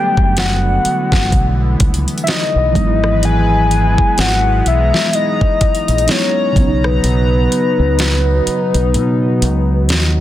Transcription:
Already playing: synth keys D3 F#3 G3 A3 B3, analog synth pad D3 B3 D4, soft synth lead G5
0.17 fingered electric bass F#1, kick
0.37 soft synth lead F#5, snare, closed hi-hat
0.85 analog synth pad E3, muted fingered electric bass stroke, closed hi-hat
1.12 fingered electric bass G1, kick, snare
1.32 fingered electric bass B1, kick, closed hi-hat
1.80 fingered electric bass C#2, kick, closed hi-hat
1.94 closed hi-hat
2.08 closed hi-hat
2.18 closed hi-hat
2.24 soft synth lead E5, closed hi-hat
2.28 soft synth lead D#5, snare
2.56 fingered electric bass B1
2.71 synth keys E3 F#3, analog synth pad B3 B4
2.75 fingered electric bass G#1, analog synth pad G#3, synth keys G#3 B3, kick, closed hi-hat
2.80 synth keys D#4
2.87 synth keys E4
3.04 cross-stick
3.23 soft synth lead G#5, closed hi-hat
3.71 closed hi-hat
3.98 kick
4.18 fingered electric bass G#1, soft synth lead F#5, snare, closed hi-hat
4.66 fingered electric bass B1, soft synth lead E5, analog synth pad A#5, closed hi-hat
4.94 snare
5.13 soft synth lead D#5, closed hi-hat
5.41 kick
5.61 muted fingered electric bass stroke, kick, closed hi-hat
5.75 closed hi-hat
5.88 fingered electric bass A#1, closed hi-hat
5.98 closed hi-hat
6.07 synth keys F#3 G#3 B3 D#4, soft synth lead C#5, snare, closed hi-hat
6.11 synth keys E4
6.52 synth keys C#3 F#3
6.56 fingered electric bass B1, analog synth pad F#3 B3 D#4, synth keys B3, kick, closed hi-hat
6.60 synth keys C#4
6.67 synth keys D#4
6.77 soft synth lead C#5
6.84 soft synth lead B4, cross-stick
7.04 fingered electric bass B1, closed hi-hat
7.52 closed hi-hat
7.79 fingered electric bass C#2
7.99 snare, closed hi-hat
8.47 muted fingered electric bass stroke, closed hi-hat
8.74 fingered electric bass B1, closed hi-hat
8.94 fingered electric bass B2, closed hi-hat
9.42 fingered electric bass C#2, closed hi-hat
9.89 fingered electric bass D#2, snare, closed hi-hat

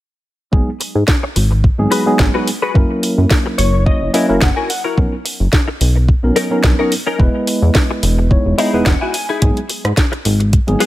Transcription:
0.52 analog synth bass G#1, tine electric piano F#3 G#3 B3 D#4 G#4, kick
0.80 muted clean electric guitar stroke, open hi-hat
0.95 analog synth bass G#2
1.08 kick, snare
1.23 muted clean electric guitar stroke
1.36 analog synth bass G#1, muted clean electric guitar stroke, open hi-hat
1.51 muted clean electric guitar stroke
1.64 kick
1.78 analog synth bass G#1, tine electric piano F#3 G#3 B3 D#4 G#4
1.91 clean electric guitar F#4 G#4 B4, open hi-hat
2.06 tine electric piano F#3 G#3 B3 D#4 G#4
2.19 analog synth bass G#1, kick, snare
2.34 tine electric piano F#3 G#3 B3 D#4 G#4, clean electric guitar F#4 G#4 B4
2.48 open hi-hat
2.62 clean electric guitar F#4 G#4 B4
2.74 analog synth bass F#1, tine electric piano F#3 A#3 C#4 E4 A#4, kick
3.03 muted clean electric guitar stroke, open hi-hat
3.18 analog synth bass F#2
3.31 kick, snare, open hi-hat
3.46 muted clean electric guitar stroke
3.58 analog synth bass F#1, clean electric guitar C#5, muted clean electric guitar stroke, open hi-hat
3.73 muted clean electric guitar stroke
3.86 tine electric piano F#3 A#3 C#4 E4 C#5, clean electric guitar D#5, kick
4.01 analog synth bass F#1
4.13 tine electric piano F#3 A#3 C#4 E4 D#5, clean electric guitar E4 F#4 A#4 E5, open hi-hat
4.29 analog synth bass F#1, tine electric piano F#3 A#3 C#4 E4 A#4
4.42 analog synth bass F#1, clean electric guitar F#5, kick, snare
4.56 clean electric guitar E4 F#4 A#4 G#5
4.69 clean electric guitar F#5, open hi-hat
4.84 clean electric guitar E4 F#4 A#4
4.97 analog synth bass B1, tine electric piano F#3 B3 C#4 D#4 A#4, kick
5.25 muted clean electric guitar stroke, open hi-hat
5.40 analog synth bass F#1
5.53 kick, snare
5.68 muted clean electric guitar stroke
5.81 analog synth bass B1, muted clean electric guitar stroke, open hi-hat
5.95 muted clean electric guitar stroke
6.09 kick
6.23 analog synth bass B1, tine electric piano F#3 B3 C#4 D#4 A#4
6.36 clean electric guitar C#4 D#4 A#4, open hi-hat
6.51 tine electric piano F#3 B3 C#4 D#4 A#4
6.64 analog synth bass B1, kick, snare
6.78 tine electric piano F#3 B3 C#4 D#4 A#4, clean electric guitar C#4 D#4 A#4
6.92 open hi-hat
7.06 clean electric guitar C#4 D#4 A#4
7.19 analog synth bass E1, tine electric piano G#3 B3 E4 B4 D#5, kick
7.47 muted clean electric guitar stroke, open hi-hat
7.62 analog synth bass E2
7.75 kick, snare, open hi-hat
7.91 muted clean electric guitar stroke
8.03 analog synth bass E1, muted clean electric guitar stroke, open hi-hat
8.19 muted clean electric guitar stroke
8.30 tine electric piano G#3 B3 D#4 E4 C#5, kick
8.46 analog synth bass E1
8.58 tine electric piano G#3 B3 D#4 E4 D#5, clean electric guitar D#4 E4 G#4 C#5, open hi-hat
8.73 analog synth bass E1, tine electric piano G#3 B3 D#4 E4 B4, clean electric guitar D#5
8.86 analog synth bass E1, clean electric guitar F#5, kick, snare
9.01 clean electric guitar D#4 E4 F#4 G#5
9.14 clean electric guitar G#5, open hi-hat
9.29 clean electric guitar D#4 E4 G#4
9.42 analog synth bass G#1, tine electric piano F#3 G#3 B3 D#4 G#4, kick, closed hi-hat
9.57 closed hi-hat
9.69 muted clean electric guitar stroke, open hi-hat
9.84 analog synth bass G#2, cross-stick, closed hi-hat
9.97 kick, snare, closed hi-hat
10.12 muted clean electric guitar stroke, closed hi-hat
10.25 analog synth bass G#1, muted clean electric guitar stroke, open hi-hat
10.40 muted clean electric guitar stroke, closed hi-hat
10.53 kick, closed hi-hat
10.67 analog synth bass G#1, tine electric piano F#3 G#3 B3 D#4 G#4, closed hi-hat
10.80 clean electric guitar B3 F#4 G#4, open hi-hat

